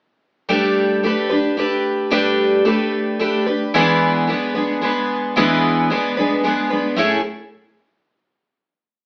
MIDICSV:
0, 0, Header, 1, 2, 480
1, 0, Start_track
1, 0, Tempo, 539568
1, 441, Time_signature, 3, 2, 24, 8
1, 8055, End_track
2, 0, Start_track
2, 0, Title_t, "Twelve-string acoustic guitar"
2, 0, Program_c, 0, 25
2, 433, Note_on_c, 0, 55, 91
2, 437, Note_on_c, 0, 57, 87
2, 443, Note_on_c, 0, 62, 87
2, 445, Note_on_c, 0, 67, 99
2, 452, Note_on_c, 0, 71, 88
2, 908, Note_off_c, 0, 57, 0
2, 916, Note_off_c, 0, 55, 0
2, 919, Note_on_c, 0, 57, 61
2, 922, Note_off_c, 0, 67, 0
2, 923, Note_off_c, 0, 62, 0
2, 927, Note_on_c, 0, 62, 60
2, 934, Note_on_c, 0, 67, 68
2, 941, Note_off_c, 0, 71, 0
2, 945, Note_on_c, 0, 71, 70
2, 1141, Note_off_c, 0, 71, 0
2, 1152, Note_on_c, 0, 71, 60
2, 1154, Note_off_c, 0, 67, 0
2, 1159, Note_off_c, 0, 57, 0
2, 1163, Note_off_c, 0, 62, 0
2, 1165, Note_on_c, 0, 67, 54
2, 1177, Note_on_c, 0, 62, 51
2, 1391, Note_off_c, 0, 62, 0
2, 1396, Note_off_c, 0, 71, 0
2, 1396, Note_on_c, 0, 57, 61
2, 1400, Note_off_c, 0, 67, 0
2, 1402, Note_on_c, 0, 62, 58
2, 1411, Note_on_c, 0, 67, 75
2, 1419, Note_on_c, 0, 71, 75
2, 1868, Note_off_c, 0, 57, 0
2, 1873, Note_on_c, 0, 55, 77
2, 1877, Note_off_c, 0, 62, 0
2, 1878, Note_off_c, 0, 67, 0
2, 1878, Note_on_c, 0, 57, 84
2, 1880, Note_on_c, 0, 62, 100
2, 1889, Note_off_c, 0, 71, 0
2, 1889, Note_on_c, 0, 67, 104
2, 1893, Note_on_c, 0, 71, 88
2, 2346, Note_off_c, 0, 57, 0
2, 2356, Note_off_c, 0, 55, 0
2, 2357, Note_on_c, 0, 57, 65
2, 2362, Note_off_c, 0, 62, 0
2, 2364, Note_off_c, 0, 67, 0
2, 2366, Note_on_c, 0, 62, 59
2, 2375, Note_on_c, 0, 67, 62
2, 2378, Note_off_c, 0, 71, 0
2, 2382, Note_on_c, 0, 71, 71
2, 2831, Note_off_c, 0, 57, 0
2, 2842, Note_on_c, 0, 57, 73
2, 2845, Note_off_c, 0, 67, 0
2, 2848, Note_off_c, 0, 62, 0
2, 2851, Note_on_c, 0, 62, 65
2, 2855, Note_on_c, 0, 67, 77
2, 2859, Note_off_c, 0, 71, 0
2, 2862, Note_on_c, 0, 71, 74
2, 3071, Note_off_c, 0, 71, 0
2, 3080, Note_off_c, 0, 67, 0
2, 3081, Note_off_c, 0, 57, 0
2, 3081, Note_on_c, 0, 71, 53
2, 3086, Note_off_c, 0, 62, 0
2, 3091, Note_on_c, 0, 67, 49
2, 3104, Note_on_c, 0, 62, 34
2, 3321, Note_off_c, 0, 71, 0
2, 3326, Note_off_c, 0, 67, 0
2, 3327, Note_on_c, 0, 40, 84
2, 3327, Note_on_c, 0, 52, 104
2, 3328, Note_off_c, 0, 62, 0
2, 3333, Note_on_c, 0, 56, 100
2, 3337, Note_on_c, 0, 59, 114
2, 3338, Note_on_c, 0, 62, 96
2, 3343, Note_on_c, 0, 71, 111
2, 3795, Note_off_c, 0, 56, 0
2, 3799, Note_on_c, 0, 56, 58
2, 3801, Note_off_c, 0, 62, 0
2, 3805, Note_off_c, 0, 40, 0
2, 3807, Note_off_c, 0, 59, 0
2, 3812, Note_on_c, 0, 62, 59
2, 3813, Note_off_c, 0, 71, 0
2, 3818, Note_on_c, 0, 59, 71
2, 3824, Note_on_c, 0, 71, 77
2, 3839, Note_off_c, 0, 52, 0
2, 4035, Note_off_c, 0, 71, 0
2, 4040, Note_off_c, 0, 56, 0
2, 4041, Note_off_c, 0, 59, 0
2, 4046, Note_on_c, 0, 71, 56
2, 4047, Note_off_c, 0, 62, 0
2, 4052, Note_on_c, 0, 59, 61
2, 4060, Note_on_c, 0, 62, 52
2, 4066, Note_on_c, 0, 56, 49
2, 4272, Note_off_c, 0, 56, 0
2, 4283, Note_off_c, 0, 62, 0
2, 4283, Note_on_c, 0, 56, 73
2, 4284, Note_off_c, 0, 71, 0
2, 4287, Note_off_c, 0, 59, 0
2, 4294, Note_on_c, 0, 62, 65
2, 4299, Note_on_c, 0, 59, 66
2, 4310, Note_on_c, 0, 71, 75
2, 4767, Note_off_c, 0, 62, 0
2, 4767, Note_on_c, 0, 40, 92
2, 4769, Note_off_c, 0, 59, 0
2, 4773, Note_off_c, 0, 56, 0
2, 4773, Note_on_c, 0, 52, 92
2, 4777, Note_off_c, 0, 71, 0
2, 4777, Note_on_c, 0, 56, 92
2, 4778, Note_on_c, 0, 62, 99
2, 4780, Note_on_c, 0, 59, 108
2, 4787, Note_on_c, 0, 71, 102
2, 5238, Note_off_c, 0, 56, 0
2, 5246, Note_off_c, 0, 40, 0
2, 5248, Note_on_c, 0, 56, 67
2, 5249, Note_off_c, 0, 52, 0
2, 5249, Note_off_c, 0, 62, 0
2, 5252, Note_off_c, 0, 59, 0
2, 5256, Note_off_c, 0, 71, 0
2, 5260, Note_on_c, 0, 62, 70
2, 5262, Note_on_c, 0, 59, 70
2, 5274, Note_on_c, 0, 71, 73
2, 5477, Note_off_c, 0, 71, 0
2, 5486, Note_off_c, 0, 56, 0
2, 5488, Note_off_c, 0, 59, 0
2, 5488, Note_on_c, 0, 71, 67
2, 5492, Note_off_c, 0, 62, 0
2, 5499, Note_on_c, 0, 59, 54
2, 5504, Note_on_c, 0, 62, 58
2, 5514, Note_on_c, 0, 56, 51
2, 5716, Note_off_c, 0, 56, 0
2, 5724, Note_off_c, 0, 62, 0
2, 5726, Note_on_c, 0, 56, 73
2, 5727, Note_off_c, 0, 71, 0
2, 5732, Note_off_c, 0, 59, 0
2, 5735, Note_on_c, 0, 62, 68
2, 5745, Note_on_c, 0, 59, 69
2, 5751, Note_on_c, 0, 71, 85
2, 5950, Note_off_c, 0, 71, 0
2, 5960, Note_on_c, 0, 71, 57
2, 5962, Note_off_c, 0, 59, 0
2, 5966, Note_off_c, 0, 56, 0
2, 5970, Note_off_c, 0, 62, 0
2, 5973, Note_on_c, 0, 59, 46
2, 5982, Note_on_c, 0, 62, 39
2, 5983, Note_on_c, 0, 56, 45
2, 6195, Note_on_c, 0, 45, 88
2, 6201, Note_off_c, 0, 56, 0
2, 6203, Note_off_c, 0, 71, 0
2, 6204, Note_on_c, 0, 57, 90
2, 6206, Note_off_c, 0, 62, 0
2, 6209, Note_off_c, 0, 59, 0
2, 6210, Note_on_c, 0, 61, 94
2, 6217, Note_on_c, 0, 64, 92
2, 6220, Note_on_c, 0, 68, 95
2, 6392, Note_off_c, 0, 45, 0
2, 6397, Note_off_c, 0, 57, 0
2, 6399, Note_off_c, 0, 61, 0
2, 6403, Note_off_c, 0, 64, 0
2, 6405, Note_off_c, 0, 68, 0
2, 8055, End_track
0, 0, End_of_file